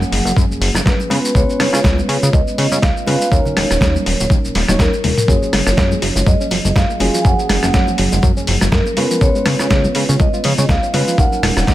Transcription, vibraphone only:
0, 0, Header, 1, 2, 480
1, 0, Start_track
1, 0, Key_signature, 6, "major"
1, 0, Tempo, 491803
1, 1316, Time_signature, 4, 2, 24, 8
1, 11462, End_track
2, 0, Start_track
2, 0, Title_t, "Vibraphone"
2, 0, Program_c, 0, 11
2, 0, Note_on_c, 0, 78, 103
2, 317, Note_off_c, 0, 78, 0
2, 837, Note_on_c, 0, 71, 87
2, 1321, Note_on_c, 0, 73, 99
2, 1331, Note_off_c, 0, 71, 0
2, 2271, Note_on_c, 0, 75, 102
2, 2307, Note_off_c, 0, 73, 0
2, 2757, Note_on_c, 0, 77, 112
2, 2768, Note_off_c, 0, 75, 0
2, 3240, Note_on_c, 0, 73, 98
2, 3251, Note_off_c, 0, 77, 0
2, 4159, Note_off_c, 0, 73, 0
2, 4682, Note_on_c, 0, 70, 89
2, 5165, Note_on_c, 0, 73, 97
2, 5173, Note_off_c, 0, 70, 0
2, 6119, Note_on_c, 0, 75, 98
2, 6149, Note_off_c, 0, 73, 0
2, 6610, Note_on_c, 0, 77, 110
2, 6612, Note_off_c, 0, 75, 0
2, 7026, Note_on_c, 0, 80, 80
2, 7035, Note_off_c, 0, 77, 0
2, 7081, Note_off_c, 0, 80, 0
2, 7091, Note_on_c, 0, 78, 111
2, 8004, Note_off_c, 0, 78, 0
2, 8516, Note_on_c, 0, 70, 90
2, 8992, Note_on_c, 0, 73, 97
2, 9010, Note_off_c, 0, 70, 0
2, 9915, Note_off_c, 0, 73, 0
2, 9959, Note_on_c, 0, 75, 98
2, 10447, Note_on_c, 0, 77, 109
2, 10452, Note_off_c, 0, 75, 0
2, 10920, Note_on_c, 0, 78, 108
2, 10936, Note_off_c, 0, 77, 0
2, 11462, Note_off_c, 0, 78, 0
2, 11462, End_track
0, 0, End_of_file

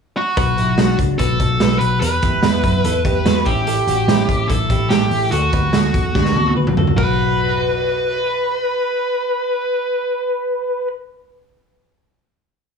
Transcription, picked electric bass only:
0, 0, Header, 1, 2, 480
1, 0, Start_track
1, 0, Key_signature, 2, "minor"
1, 0, Tempo, 412655
1, 436, Time_signature, 4, 2, 24, 8
1, 14862, End_track
2, 0, Start_track
2, 0, Title_t, "Picked electric bass"
2, 0, Program_c, 0, 34
2, 432, Note_on_c, 0, 35, 91
2, 629, Note_off_c, 0, 35, 0
2, 672, Note_on_c, 0, 35, 79
2, 869, Note_off_c, 0, 35, 0
2, 910, Note_on_c, 0, 35, 82
2, 1108, Note_off_c, 0, 35, 0
2, 1144, Note_on_c, 0, 37, 64
2, 1344, Note_off_c, 0, 37, 0
2, 1389, Note_on_c, 0, 35, 84
2, 1586, Note_off_c, 0, 35, 0
2, 1625, Note_on_c, 0, 35, 92
2, 1824, Note_off_c, 0, 35, 0
2, 1867, Note_on_c, 0, 35, 88
2, 2065, Note_off_c, 0, 35, 0
2, 2104, Note_on_c, 0, 35, 80
2, 2303, Note_off_c, 0, 35, 0
2, 2342, Note_on_c, 0, 40, 79
2, 2542, Note_off_c, 0, 40, 0
2, 2589, Note_on_c, 0, 40, 83
2, 2785, Note_off_c, 0, 40, 0
2, 2824, Note_on_c, 0, 40, 84
2, 3022, Note_off_c, 0, 40, 0
2, 3066, Note_on_c, 0, 42, 63
2, 3264, Note_off_c, 0, 42, 0
2, 3305, Note_on_c, 0, 40, 85
2, 3503, Note_off_c, 0, 40, 0
2, 3543, Note_on_c, 0, 40, 84
2, 3742, Note_off_c, 0, 40, 0
2, 3785, Note_on_c, 0, 40, 86
2, 3984, Note_off_c, 0, 40, 0
2, 4027, Note_on_c, 0, 33, 78
2, 4422, Note_off_c, 0, 33, 0
2, 4504, Note_on_c, 0, 33, 82
2, 4704, Note_off_c, 0, 33, 0
2, 4743, Note_on_c, 0, 33, 84
2, 4943, Note_off_c, 0, 33, 0
2, 4988, Note_on_c, 0, 33, 74
2, 5187, Note_off_c, 0, 33, 0
2, 5228, Note_on_c, 0, 33, 87
2, 5427, Note_off_c, 0, 33, 0
2, 5465, Note_on_c, 0, 33, 92
2, 5666, Note_off_c, 0, 33, 0
2, 5700, Note_on_c, 0, 33, 91
2, 5903, Note_off_c, 0, 33, 0
2, 5943, Note_on_c, 0, 33, 82
2, 6146, Note_off_c, 0, 33, 0
2, 6183, Note_on_c, 0, 38, 87
2, 6386, Note_off_c, 0, 38, 0
2, 6433, Note_on_c, 0, 38, 88
2, 6632, Note_off_c, 0, 38, 0
2, 6664, Note_on_c, 0, 38, 89
2, 6868, Note_off_c, 0, 38, 0
2, 6906, Note_on_c, 0, 40, 73
2, 7109, Note_off_c, 0, 40, 0
2, 7152, Note_on_c, 0, 38, 96
2, 7353, Note_off_c, 0, 38, 0
2, 7393, Note_on_c, 0, 38, 84
2, 7594, Note_off_c, 0, 38, 0
2, 7636, Note_on_c, 0, 38, 84
2, 7836, Note_off_c, 0, 38, 0
2, 7878, Note_on_c, 0, 38, 75
2, 8078, Note_off_c, 0, 38, 0
2, 8114, Note_on_c, 0, 35, 79
2, 12654, Note_off_c, 0, 35, 0
2, 14862, End_track
0, 0, End_of_file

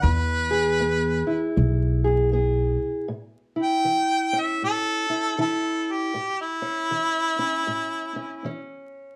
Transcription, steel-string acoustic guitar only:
0, 0, Header, 1, 2, 480
1, 0, Start_track
1, 0, Key_signature, 3, "major"
1, 0, Tempo, 765306
1, 23, Time_signature, 4, 2, 24, 8
1, 5745, End_track
2, 0, Start_track
2, 0, Title_t, "Steel-string acoustic guitar"
2, 0, Program_c, 0, 25
2, 27, Note_on_c, 0, 52, 65
2, 317, Note_on_c, 0, 68, 67
2, 465, Note_off_c, 0, 52, 0
2, 503, Note_on_c, 0, 59, 66
2, 795, Note_on_c, 0, 64, 56
2, 943, Note_off_c, 0, 59, 0
2, 980, Note_on_c, 0, 47, 59
2, 1272, Note_off_c, 0, 68, 0
2, 1281, Note_on_c, 0, 68, 61
2, 1421, Note_off_c, 0, 47, 0
2, 1455, Note_off_c, 0, 68, 0
2, 1455, Note_on_c, 0, 59, 68
2, 1463, Note_on_c, 0, 68, 65
2, 1898, Note_off_c, 0, 59, 0
2, 1916, Note_off_c, 0, 64, 0
2, 1917, Note_off_c, 0, 68, 0
2, 1933, Note_on_c, 0, 45, 71
2, 2233, Note_on_c, 0, 64, 60
2, 2377, Note_off_c, 0, 45, 0
2, 2412, Note_on_c, 0, 52, 59
2, 2715, Note_on_c, 0, 61, 60
2, 2857, Note_off_c, 0, 52, 0
2, 2899, Note_on_c, 0, 45, 62
2, 3189, Note_off_c, 0, 64, 0
2, 3196, Note_on_c, 0, 64, 61
2, 3341, Note_off_c, 0, 45, 0
2, 3373, Note_off_c, 0, 64, 0
2, 3376, Note_on_c, 0, 52, 78
2, 3380, Note_on_c, 0, 64, 70
2, 3820, Note_off_c, 0, 52, 0
2, 3837, Note_off_c, 0, 64, 0
2, 3839, Note_off_c, 0, 61, 0
2, 3851, Note_on_c, 0, 45, 74
2, 4151, Note_on_c, 0, 61, 57
2, 4299, Note_off_c, 0, 45, 0
2, 4334, Note_on_c, 0, 52, 63
2, 4626, Note_off_c, 0, 61, 0
2, 4633, Note_on_c, 0, 61, 65
2, 4781, Note_off_c, 0, 52, 0
2, 4811, Note_on_c, 0, 45, 64
2, 5110, Note_off_c, 0, 61, 0
2, 5118, Note_on_c, 0, 61, 53
2, 5261, Note_off_c, 0, 45, 0
2, 5296, Note_off_c, 0, 61, 0
2, 5297, Note_on_c, 0, 52, 68
2, 5303, Note_on_c, 0, 61, 69
2, 5745, Note_off_c, 0, 52, 0
2, 5745, Note_off_c, 0, 61, 0
2, 5745, End_track
0, 0, End_of_file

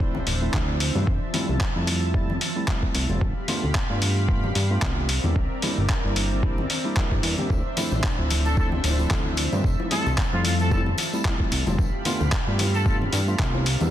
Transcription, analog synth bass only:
0, 0, Header, 1, 2, 480
1, 0, Start_track
1, 0, Tempo, 535714
1, 963, Time_signature, 4, 2, 24, 8
1, 12459, End_track
2, 0, Start_track
2, 0, Title_t, "Analog synth bass"
2, 0, Program_c, 0, 38
2, 0, Note_on_c, 0, 26, 81
2, 210, Note_off_c, 0, 26, 0
2, 240, Note_on_c, 0, 26, 104
2, 443, Note_off_c, 0, 26, 0
2, 480, Note_on_c, 0, 38, 100
2, 816, Note_off_c, 0, 38, 0
2, 852, Note_on_c, 0, 43, 94
2, 942, Note_off_c, 0, 43, 0
2, 960, Note_on_c, 0, 29, 101
2, 1070, Note_off_c, 0, 29, 0
2, 1335, Note_on_c, 0, 36, 84
2, 1423, Note_off_c, 0, 36, 0
2, 1574, Note_on_c, 0, 41, 78
2, 2131, Note_off_c, 0, 41, 0
2, 2640, Note_on_c, 0, 36, 96
2, 2750, Note_off_c, 0, 36, 0
2, 2771, Note_on_c, 0, 29, 96
2, 2861, Note_off_c, 0, 29, 0
2, 2878, Note_on_c, 0, 31, 103
2, 2989, Note_off_c, 0, 31, 0
2, 3255, Note_on_c, 0, 38, 86
2, 3343, Note_off_c, 0, 38, 0
2, 3493, Note_on_c, 0, 43, 81
2, 4051, Note_off_c, 0, 43, 0
2, 4081, Note_on_c, 0, 43, 102
2, 4283, Note_off_c, 0, 43, 0
2, 4320, Note_on_c, 0, 36, 99
2, 4656, Note_off_c, 0, 36, 0
2, 4695, Note_on_c, 0, 40, 94
2, 4783, Note_off_c, 0, 40, 0
2, 4801, Note_on_c, 0, 36, 101
2, 4911, Note_off_c, 0, 36, 0
2, 5177, Note_on_c, 0, 31, 86
2, 5264, Note_off_c, 0, 31, 0
2, 5415, Note_on_c, 0, 31, 81
2, 5971, Note_off_c, 0, 31, 0
2, 6373, Note_on_c, 0, 31, 90
2, 6462, Note_off_c, 0, 31, 0
2, 6481, Note_on_c, 0, 40, 92
2, 6591, Note_off_c, 0, 40, 0
2, 6720, Note_on_c, 0, 38, 98
2, 6830, Note_off_c, 0, 38, 0
2, 7091, Note_on_c, 0, 33, 87
2, 7181, Note_off_c, 0, 33, 0
2, 7332, Note_on_c, 0, 26, 81
2, 7890, Note_off_c, 0, 26, 0
2, 7920, Note_on_c, 0, 26, 103
2, 8123, Note_off_c, 0, 26, 0
2, 8159, Note_on_c, 0, 38, 99
2, 8496, Note_off_c, 0, 38, 0
2, 8535, Note_on_c, 0, 43, 95
2, 8623, Note_off_c, 0, 43, 0
2, 8639, Note_on_c, 0, 29, 104
2, 8750, Note_off_c, 0, 29, 0
2, 9014, Note_on_c, 0, 36, 86
2, 9103, Note_off_c, 0, 36, 0
2, 9253, Note_on_c, 0, 41, 80
2, 9810, Note_off_c, 0, 41, 0
2, 10321, Note_on_c, 0, 36, 95
2, 10431, Note_off_c, 0, 36, 0
2, 10454, Note_on_c, 0, 29, 95
2, 10543, Note_off_c, 0, 29, 0
2, 10560, Note_on_c, 0, 31, 104
2, 10670, Note_off_c, 0, 31, 0
2, 10935, Note_on_c, 0, 38, 86
2, 11023, Note_off_c, 0, 38, 0
2, 11174, Note_on_c, 0, 43, 80
2, 11731, Note_off_c, 0, 43, 0
2, 11763, Note_on_c, 0, 43, 99
2, 11964, Note_off_c, 0, 43, 0
2, 12000, Note_on_c, 0, 36, 100
2, 12336, Note_off_c, 0, 36, 0
2, 12375, Note_on_c, 0, 40, 95
2, 12459, Note_off_c, 0, 40, 0
2, 12459, End_track
0, 0, End_of_file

